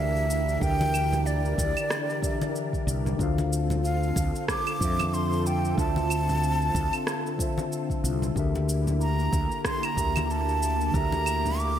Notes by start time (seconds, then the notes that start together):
Already playing: D2 D3 E3 D4 G4 A#4 D5 E5
0.16 shaker
0.30 shaker
0.49 shaker
0.59 D2 D3 D4 G4 G5, kick, shaker
0.63 A#4 E5
0.81 high conga, shaker
0.94 claves, shaker
1.12 low conga, shaker
1.26 D5, shaker
1.45 shaker
1.58 D2, kick, high conga, shaker
1.77 claves, shaker
1.90 cross-stick, shaker
2.10 shaker
2.20 D3 D4 G4, kick, shaker
2.25 A#4 E5
2.42 high conga, shaker
2.56 shaker
2.73 kick, shaker
2.87 C2, shaker
3.06 low conga, shaker
3.17 D2 D3 C4 D4 F4 A4, kick, shaker
3.21 C5 F5
3.38 high conga, shaker
3.53 shaker
3.70 low conga, shaker
3.84 F5, shaker
4.03 shaker
4.16 D2, kick, high conga, shaker
4.35 shaker
4.48 D6, kick, cross-stick, shaker
4.67 claves, shaker
4.79 F2 D3 D4 F4, kick, shaker
4.83 C5 E5
4.99 high conga, claves, shaker
5.14 C6, shaker
5.33 shaker
5.46 G5, shaker
5.65 shaker
5.75 D2 D3 D4 F4, kick, shaker
5.79 C5 E5 A5
5.96 high conga, shaker
6.10 claves, shaker
6.29 low conga, shaker
6.43 shaker
6.62 shaker
6.75 D2, kick, high conga, shaker
6.93 claves, shaker
7.07 cross-stick, shaker
7.26 shaker
7.36 D3 D4 F4, kick, shaker
7.41 C5 E5
7.58 high conga, shaker
7.72 shaker
7.90 kick, shaker
8.04 C2, shaker
8.22 low conga, shaker
8.33 D2 D3 A#3 D4 E4 G4, kick, shaker
8.38 A#4 E5
8.55 high conga, shaker
8.69 shaker
8.87 low conga, shaker
9.01 A#5, shaker
9.20 shaker
9.33 D2, kick, high conga, shaker
9.52 shaker
9.65 C6, kick, cross-stick, shaker
9.83 A#5, claves, shaker
9.94 D2 D3 D4 G4, kick, shaker
9.99 A#4 E5
10.16 high conga, claves, shaker
10.30 A5, shaker
10.49 shaker
10.62 shaker
10.81 shaker
10.91 D2 D3 D4 G4, kick, shaker
10.96 A#4 E5 A#5
11.12 high conga, shaker
11.26 claves, shaker
11.45 low conga, shaker
11.60 D6, shaker